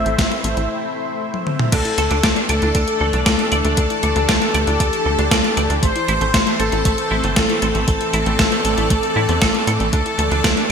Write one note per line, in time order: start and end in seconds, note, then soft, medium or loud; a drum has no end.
0.00 1.68 A3 medium
0.00 1.68 C4 medium
0.00 1.68 E4 medium
0.00 1.68 C5 medium
0.00 0.70 E5 loud
0.00 1.69 E5 medium
0.06 0.17 A1 medium
0.06 0.11 A4 medium
0.06 closed hi-hat soft
0.18 0.30 A1 loud
0.18 0.27 A3 medium
0.18 kick loud
0.18 snare loud
0.18 closed hi-hat loud
0.31 0.37 C5 medium
0.31 snare soft
0.31 closed hi-hat soft
0.44 0.55 A1 medium
0.44 0.56 A3 loud
0.44 closed hi-hat medium
0.57 0.68 A1 medium
0.57 0.66 E4 medium
0.57 closed hi-hat soft
1.34 high tom medium
1.47 mid tom medium
1.59 mid tom medium
1.72 1.84 D2 loud
1.72 10.72 E3 medium
1.72 5.79 A3 medium
1.72 1.81 A3 medium
1.72 1.79 D4 medium
1.72 5.79 D4 medium
1.72 2.39 A4 loud
1.72 3.75 A4 medium
1.72 2.39 A4 loud
1.72 5.79 D5 medium
1.72 kick loud
1.72 closed hi-hat loud
1.72 crash loud
1.85 1.94 E4 loud
1.85 closed hi-hat soft
1.98 2.09 D2 loud
1.98 2.10 A3 medium
1.98 2.02 A4 medium
1.98 closed hi-hat medium
2.11 2.22 D2 medium
2.11 2.17 D4 loud
2.11 2.16 A4 medium
2.11 closed hi-hat soft
2.23 2.35 D2 loud
2.23 2.32 A3 medium
2.23 2.27 D5 loud
2.23 kick loud
2.23 snare loud
2.23 closed hi-hat loud
2.36 2.43 D4 medium
2.36 2.42 D5 medium
2.36 closed hi-hat soft
2.49 2.60 D2 medium
2.49 2.62 A3 loud
2.49 3.16 A4 loud
2.49 2.53 D5 loud
2.49 closed hi-hat medium
2.62 2.73 D2 medium
2.62 2.69 D4 medium
2.62 2.71 E4 medium
2.62 closed hi-hat soft
2.75 2.86 D2 loud
2.75 2.84 A3 medium
2.75 2.81 D4 medium
2.75 kick loud
2.75 closed hi-hat medium
2.88 2.97 A4 loud
2.88 closed hi-hat soft
3.01 3.12 D2 medium
3.01 3.13 A3 medium
3.01 3.04 A4 medium
3.13 3.24 C2 medium
3.13 3.20 D4 loud
3.13 3.19 D5 medium
3.13 closed hi-hat soft
3.26 3.37 D2 loud
3.26 3.35 A3 medium
3.26 5.72 A4 loud
3.26 5.73 A4 loud
3.26 3.30 D5 loud
3.26 kick loud
3.26 snare loud
3.26 closed hi-hat loud
3.39 3.45 D4 medium
3.39 3.48 E4 loud
3.39 closed hi-hat soft
3.52 3.63 D2 loud
3.52 3.64 A3 loud
3.52 3.56 D5 loud
3.52 closed hi-hat medium
3.65 3.76 D2 medium
3.65 3.71 D4 medium
3.65 3.74 A4 medium
3.65 closed hi-hat soft
3.77 3.89 D2 loud
3.77 3.86 A3 medium
3.77 3.84 D4 medium
3.77 5.81 G4 medium
3.77 kick loud
3.77 closed hi-hat loud
3.90 3.99 E4 loud
3.90 closed hi-hat soft
4.03 4.14 D2 loud
4.03 4.15 A3 medium
4.03 4.07 A4 medium
4.03 closed hi-hat medium
4.16 4.27 D2 medium
4.16 4.22 D4 loud
4.16 4.21 A4 medium
4.16 closed hi-hat soft
4.29 4.40 D2 loud
4.29 4.37 A3 medium
4.29 4.33 D5 loud
4.29 kick loud
4.29 snare loud
4.29 closed hi-hat loud
4.42 4.48 D4 medium
4.42 4.47 D5 medium
4.42 closed hi-hat soft
4.54 4.66 D2 medium
4.54 4.67 A3 loud
4.54 4.58 D5 loud
4.54 closed hi-hat medium
4.67 4.78 D2 medium
4.67 4.74 D4 medium
4.67 4.76 E4 medium
4.67 closed hi-hat soft
4.80 4.91 D2 loud
4.80 4.89 A3 medium
4.80 4.86 D4 medium
4.80 kick loud
4.80 closed hi-hat medium
4.93 5.02 A4 loud
4.93 closed hi-hat soft
5.06 5.17 D2 medium
5.06 5.18 A3 medium
5.06 5.10 A4 medium
5.18 5.30 D2 medium
5.18 5.25 D4 loud
5.18 5.24 D5 medium
5.18 closed hi-hat soft
5.31 5.43 D2 loud
5.31 5.40 A3 medium
5.31 5.35 D5 loud
5.31 kick loud
5.31 snare loud
5.31 closed hi-hat loud
5.44 5.51 D4 medium
5.44 5.53 E4 loud
5.44 closed hi-hat soft
5.57 5.68 D2 loud
5.57 5.69 A3 loud
5.57 5.61 D5 loud
5.57 closed hi-hat medium
5.70 5.81 D2 medium
5.70 5.76 D4 medium
5.70 5.79 A4 medium
5.70 closed hi-hat soft
5.83 5.94 A1 loud
5.83 10.72 A3 medium
5.83 5.89 A3 medium
5.83 5.91 A3 medium
5.83 9.89 C4 medium
5.83 10.72 A4 medium
5.83 7.86 C5 medium
5.83 6.49 C5 loud
5.83 kick loud
5.83 closed hi-hat medium
5.96 6.04 E4 loud
5.96 closed hi-hat soft
6.08 6.19 A1 loud
6.08 6.21 A3 medium
6.08 6.12 E4 medium
6.08 closed hi-hat medium
6.21 6.32 A1 medium
6.21 6.28 A3 loud
6.21 6.26 A4 medium
6.21 closed hi-hat soft
6.34 6.45 A1 loud
6.34 6.43 A3 medium
6.34 6.38 A4 loud
6.34 kick loud
6.34 snare loud
6.34 closed hi-hat loud
6.47 6.53 A3 medium
6.47 6.52 C5 medium
6.47 closed hi-hat soft
6.59 6.71 A1 medium
6.59 6.72 A3 loud
6.59 6.63 A4 loud
6.59 7.26 A4 loud
6.59 closed hi-hat medium
6.72 6.84 A1 medium
6.72 6.79 A3 medium
6.72 6.81 E4 medium
6.72 closed hi-hat soft
6.85 6.96 A1 loud
6.85 6.92 A3 medium
6.85 6.94 A3 medium
6.85 kick loud
6.85 closed hi-hat medium
6.98 7.07 A4 loud
6.98 closed hi-hat soft
7.11 7.22 A1 loud
7.11 7.23 A3 medium
7.11 7.15 E4 medium
7.24 7.35 G1 medium
7.24 7.30 A3 loud
7.24 7.29 C5 medium
7.24 closed hi-hat soft
7.36 7.48 A1 loud
7.36 7.45 A3 medium
7.36 7.40 A4 loud
7.36 9.83 A4 loud
7.36 kick loud
7.36 snare loud
7.36 closed hi-hat loud
7.49 7.56 A3 medium
7.49 7.58 E4 loud
7.49 closed hi-hat soft
7.62 7.73 A1 loud
7.62 7.75 A3 loud
7.62 7.66 A4 loud
7.62 closed hi-hat medium
7.75 7.86 A1 medium
7.75 7.81 A3 medium
7.75 7.84 A4 medium
7.75 closed hi-hat soft
7.88 7.99 A1 loud
7.88 7.94 A3 medium
7.88 7.97 A3 medium
7.88 9.91 D5 medium
7.88 kick loud
7.88 closed hi-hat medium
8.01 8.09 E4 loud
8.01 closed hi-hat soft
8.13 8.24 A1 loud
8.13 8.26 A3 medium
8.13 8.17 E4 medium
8.13 closed hi-hat medium
8.26 8.37 A1 medium
8.26 8.33 A3 loud
8.26 8.32 A4 medium
8.26 closed hi-hat soft
8.39 8.50 A1 loud
8.39 8.48 A3 medium
8.39 8.43 A4 loud
8.39 kick loud
8.39 snare loud
8.39 closed hi-hat medium
8.52 8.58 A3 medium
8.52 8.57 C5 medium
8.52 closed hi-hat soft
8.65 8.76 A1 medium
8.65 8.77 A3 loud
8.65 8.68 A4 loud
8.65 closed hi-hat medium
8.77 8.89 A1 medium
8.77 8.84 A3 medium
8.77 8.86 E4 medium
8.77 closed hi-hat soft
8.90 9.01 A1 loud
8.90 8.97 A3 medium
8.90 8.99 A3 medium
8.90 kick loud
8.90 closed hi-hat medium
9.03 9.12 A4 loud
9.03 closed hi-hat soft
9.16 9.27 A2 medium
9.16 9.28 A3 medium
9.16 9.20 E4 medium
9.29 9.40 E2 medium
9.29 9.35 A3 loud
9.29 9.34 C5 medium
9.29 closed hi-hat soft
9.42 9.53 A1 loud
9.42 9.50 A3 medium
9.42 9.45 A4 loud
9.42 kick loud
9.42 snare loud
9.42 closed hi-hat medium
9.54 9.61 A3 medium
9.54 9.63 E4 loud
9.54 closed hi-hat soft
9.67 9.78 A2 loud
9.67 9.80 A3 loud
9.67 9.71 A4 loud
9.67 closed hi-hat medium
9.80 9.91 A1 medium
9.80 9.86 A3 medium
9.80 9.89 A4 medium
9.80 closed hi-hat soft
9.93 10.04 D2 loud
9.93 10.02 A3 medium
9.93 9.99 D4 medium
9.93 10.72 D4 medium
9.93 10.60 A4 loud
9.93 10.72 D5 medium
9.93 kick loud
9.93 closed hi-hat medium
10.06 10.15 E4 loud
10.06 closed hi-hat soft
10.18 10.30 D2 loud
10.18 10.31 A3 medium
10.18 10.22 A4 medium
10.18 closed hi-hat medium
10.31 10.42 D2 medium
10.31 10.38 D4 medium
10.31 10.37 A4 medium
10.31 closed hi-hat soft
10.44 10.55 D2 loud
10.44 10.53 A3 medium
10.44 10.48 D5 loud
10.44 kick loud
10.44 snare loud
10.44 closed hi-hat medium
10.57 10.63 D4 medium
10.57 10.62 D5 medium
10.57 closed hi-hat soft